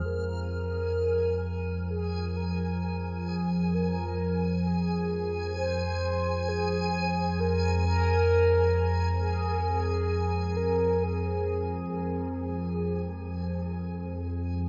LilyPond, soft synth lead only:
\new Staff \with { instrumentName = "Soft synth lead" } { \time 4/4 \tempo 4 = 65 bes'8 bes'4. aes'8 bes'4 aes'8 | bes'4 aes'4 c''4 aes'4 | bes'8 bes'4. aes'4. bes'8 | aes'2. r4 | }